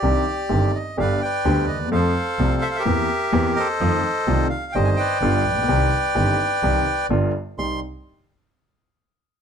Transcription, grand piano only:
\new Staff \with { instrumentName = "Grand piano" } { \clef bass \time 4/4 \key c \minor \tempo 4 = 128 <c, c ees c' d' g'>8 r8 <g,, g, ees c' d' g'>8 r8 <g,, g, d g b g'>8 r8 <d, d g b g'>8 r32 d,32 ees,32 e,32 | <f, f a c' a'>8 r8 <c, c f a c' a'>8 r8 <e, e bes c' g'>8 r8 <e, e bes c' g'>8 r8 | <f, ees f a c' f'>8 r8 <c, c ees a c' f'>8 r8 <g,, g, ees g c' g'>8 r8 <g,, g, d g b f'>8 r32 a,,32 bes,,32 b,,32 | <c, c ees g c' g'>8 r8 <g,, g, ees g c' g'>8 r8 <c, c ees g c' g'>8 r8 <g,, g, d g b f'>8 r8 |
<c, g c' ees'>8 r2. r8 | }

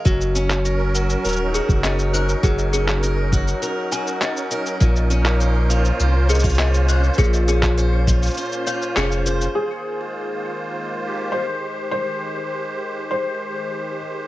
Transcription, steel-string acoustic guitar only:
\new Staff \with { instrumentName = "Steel-string acoustic guitar" } { \time 4/4 \key aes \major \tempo 4 = 101 ges8 des'8 bes'8 ges'8 bes'8 ges'8 des'8 bes'8 | ges8 des'8 bes'8 ges'8 bes'8 ges'8 des'8 bes'8 | bes,8 des'8 c''8 f'8 c''8 ees'16 f'16 des'8 c''8 | bes,8 des'8 c''8 f'8 c''8 f'8 des'8 c''8 |
r1 | r1 | }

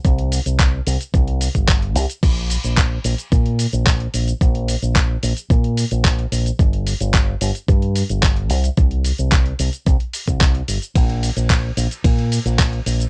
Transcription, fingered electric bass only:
\new Staff \with { instrumentName = "Fingered electric bass" } { \clef bass \time 4/4 \key c \dorian \tempo 4 = 110 c,8 r16 c,8 r16 c,16 r16 c,8 r16 g,,8. c,16 r16 | bes,,8 r16 bes,,8 r16 bes,,16 r16 bes,8 r16 bes,,8 r16 bes,,16 r16 | bes,,8 r16 bes,,8 r16 bes,,16 r16 bes,8 r16 bes,,8 r16 bes,,16 r16 | g,,8 r16 g,,8 r16 g,,16 r16 g,8 r16 g,,8. c,16 r16 |
c,8 r16 c,8 r16 c,16 r16 c,16 r8 c,8 r16 g,,16 r16 | bes,,8 r16 bes,,8 r16 bes,,16 r16 bes,8 r16 bes,,8 r16 bes,,16 r16 | }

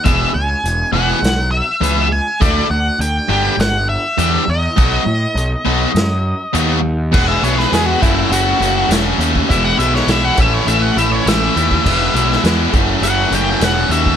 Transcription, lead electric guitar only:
\new Staff \with { instrumentName = "Lead electric guitar" } { \time 4/4 \key e \major \tempo 4 = 102 e''8 gis''4 fis''4 e''4 gis''8 | d''8 fis''8 g''4 fis''8 e''4 dis''8~ | dis''2.~ dis''8 r8 | fis''16 e''16 cis''16 b'16 gis'16 fis'16 e'8 fis'4 r4 |
e''16 fis''16 e''16 cis''16 e''16 fis''16 e''16 cis''16 e''16 fis''16 e''16 cis''16 e''4~ | e''4 r4 fis''8 g''8 fis''8 e''8 | }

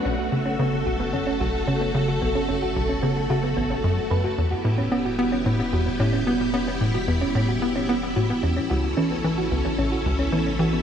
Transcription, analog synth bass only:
\new Staff \with { instrumentName = "Analog synth bass" } { \clef bass \time 4/4 \key fis \phrygian \tempo 4 = 111 b,,8 cis8 cis8 b,,8 fis,,8 b,,8 cis8 cis8 | b,,8 fis,,8 b,,8 cis8 cis8 a,,8 fis,8 fis,8 | e,8 a,8 b8 b8 a,8 e,8 a,8 b8 | b8 a,8 e,8 a,8 b8 b8 a,8 e,8 |
cis,8 e8 e8 cis,8 a,,8 cis,8 e8 e8 | }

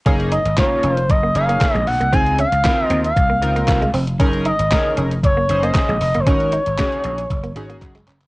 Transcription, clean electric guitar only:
\new Staff \with { instrumentName = "Clean electric guitar" } { \time 4/4 \key ges \lydian \tempo 4 = 116 des'16 r16 ees'16 r8. des'16 r8 bes16 r16 bes16 r16 aes16 r16 bes16 | c'16 r16 des'16 r8. c'16 r8 bes16 r16 bes16 r16 aes16 c'16 r16 | des'16 r16 ees'16 r8. des'16 r8 bes16 r16 bes16 r16 aes16 r16 bes16 | des'16 r16 ees'16 r8. des'16 r8 bes16 r16 bes16 r16 aes16 des'16 r16 | }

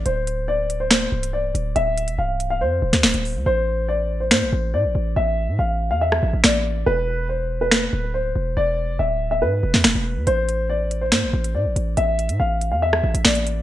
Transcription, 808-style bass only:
\new Staff \with { instrumentName = "808-style bass" } { \clef bass \time 4/4 \key a \minor \tempo 4 = 141 d,,2~ d,,8 c,,4 d,,8 | d,,8. e,,16 c,,4 f,8 d,,16 d,16 d,,16 d,,8 d,16 | a,,2 a,16 a,,16 a,,8 a,16 a,,16 a,,8 | a,,8. a,16 a,,8. e,8. a,,16 a,,16 a,,4 |
e,,2~ e,,8 d,,4 e,,8 | e,,8. f,,16 d,,4 gis,8 e,,16 e,16 e,,16 e,,8 e,16 | a,,2 a,16 a,,16 a,,8 a,16 a,,16 a,,8 | a,,8. a,16 a,,8. e,8. a,,16 a,,16 a,,4 | }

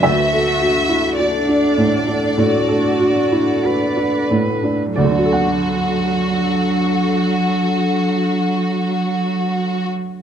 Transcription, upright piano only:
\new Staff \with { instrumentName = "Upright piano" } { \time 4/4 \key d \major \tempo 4 = 45 << { e''4 d''2~ d''8 r8 | <d, d d' fis' a' d'' fis''>1 | } \\ { d,16 a'16 fis'16 e'16 fis'16 d'16 a,16 d'16 a,16 a'16 fis'16 e'16 fis'16 d'16 a,16 d'16 | r1 | } >> }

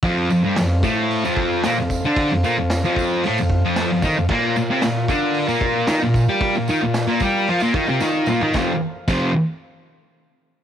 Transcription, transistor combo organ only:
\new Staff \with { instrumentName = "Transistor combo organ" } { \time 4/4 \key f \major \tempo 4 = 113 <a' c'' f''>1~ | <a' c'' f''>1 | <f' bes' f''>1~ | <f' bes' f''>1 |
<a' c'' f''>8 r2. r8 | }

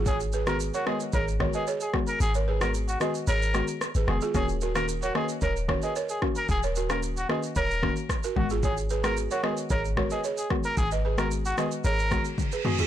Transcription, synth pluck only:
\new Staff \with { instrumentName = "Synth pluck" } { \time 4/4 \key aes \dorian \tempo 4 = 112 r8. <ees aes ces' ges'>8. <ees aes ces' ges'>8 r8 <ees aes ces' ges'>16 r8. <ees aes ces' ges'>8 | r8. <ees aes ces' ges'>8. <ees aes ces' ges'>8 r8 <ees aes ces' ges'>16 r8. <ees aes ces' ges'>8 | <ees bes des' ges'>8. <ees bes des' ges'>8. <ees bes des' ges'>8 r8 <ees bes des' ges'>16 r8. <ees bes des' ges'>8 | r8. <ees bes des' ges'>8. <ees bes des' ges'>8 r8 <ees bes des' ges'>16 r8. <ees aes ces' ges'>8 |
r8. <ees aes ces' ges'>8. <ees aes ces' ges'>8 r8 <ees aes ces' ges'>16 r8. <ees aes ces' ges'>8 | r8. <ees aes ces' ges'>8. <ees aes ces' ges'>8 r8 <ees aes ces' ges'>16 r8. <ees aes ces' ges'>8 | }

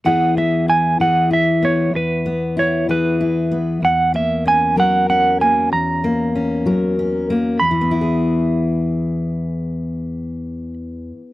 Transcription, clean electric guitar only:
\new Staff \with { instrumentName = "Clean electric guitar" } { \time 6/8 \key e \lydian \tempo 4. = 64 fis''8 e''8 gis''8 fis''8 e''8 cis''8 | b'4 cis''8 b'4 r8 | fis''8 e''8 gis''8 fis''8 fis''8 gis''8 | ais''2~ ais''8 r8 |
b''2.~ | b''2. | }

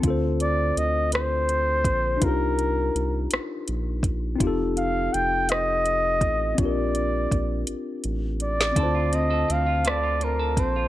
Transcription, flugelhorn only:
\new Staff \with { instrumentName = "Flugelhorn" } { \time 6/8 \key d \phrygian \tempo 4. = 55 r8 d''8 ees''8 c''4. | bes'4. r4. | r8 f''8 g''8 ees''4. | d''4. r4 d''8~ |
d''8 ees''8 f''8 d''8 bes'8 c''8 | }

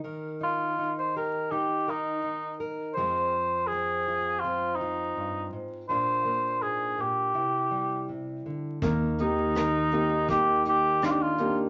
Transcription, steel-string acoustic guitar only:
\new Staff \with { instrumentName = "Steel-string acoustic guitar" } { \time 4/4 \key ees \major \tempo 4 = 82 << { bes'4 ees'8 g'8 ees'8 bes'4 bes'8 | <aes c' f'>4 c'8 f'8 c'8 f'4. | <bes d' f'>2 e'2 | bes'4 bes'4 ees'8 ees'8 ees'8 r8 | } \\ { ees8 ees'8 r2 ees'4 | f,2. g,8 aes,8 | bes,8 bes8 aes,8 bes,8 c8 g8 c8 d8 | ees8 ees'4 ees'8 r4. ees'8 | } >> }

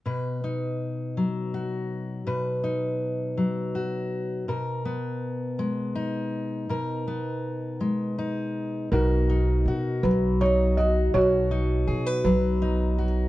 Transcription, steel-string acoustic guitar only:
\new Staff \with { instrumentName = "Steel-string acoustic guitar" } { \time 6/8 \key b \major \tempo 4. = 54 << { b'8 dis'4. fis'4 | b'8 dis'4. fis'4 | ais'8 b4. dis'4 | ais'8 b4. dis'4 |
fis'8 dis'8 fis'4 dis'8 fis'8 | fis'8 dis'8 gis'16 b'8. dis'8 fis'8 | } \\ { b,4. fis4. | b,4. fis4. | b,4. gis4. | b,4. gis4. |
b,4. fis4. | b,4. fis4. | } >> }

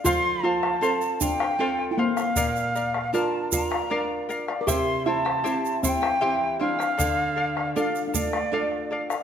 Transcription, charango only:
\new Staff \with { instrumentName = "Charango" } { \time 3/4 \key d \minor \tempo 4 = 78 <a' c'' f''>8 <a' c'' f''>16 <c'' f''>16 <a' c'' f''>8 <a' c'' f''>16 <c'' f''>16 <a' c'' f''>8 <a' c'' f''>16 <c'' f''>16 | <bes' d'' f''>8 <bes' d'' f''>16 <d'' f''>16 <bes' d'' f''>8 <bes' d'' f''>16 <d'' f''>16 <bes' d'' f''>8 <bes' d'' f''>16 <d'' f''>16 | <e' g' c'' e'' g''>8 <e' c'' e'' g''>16 <e' c'' g''>16 <e' g' c'' e'' g''>8 <e' c'' e'' g''>16 <e' c'' g''>16 <e' g' c'' e'' g''>8 <e' c'' e'' g''>16 <e' c'' g''>16 | <a' d'' f''>8 <a' d'' f''>16 <d'' f''>16 <a' d'' f''>8 <a' d'' f''>16 <d'' f''>16 <a' d'' f''>8 <a' d'' f''>16 <d'' f''>16 | }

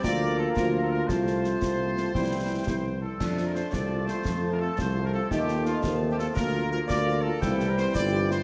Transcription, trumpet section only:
\new Staff \with { instrumentName = "Trumpet section" } { \time 6/8 \key f \major \tempo 4. = 114 d''4 a'8 bes'8. a'16 bes'8 | c''2.~ | c''4. c''4 a'8~ | a'8. bes'16 c''8 d''4 c''8~ |
c''8. bes'16 a'8 c''8. bes'16 a'8 | g'4 f'4~ f'16 g'16 a'8 | bes'4 bes'8 d''4 a'8~ | a'8. bes'16 c''8 d''4 c''8 | }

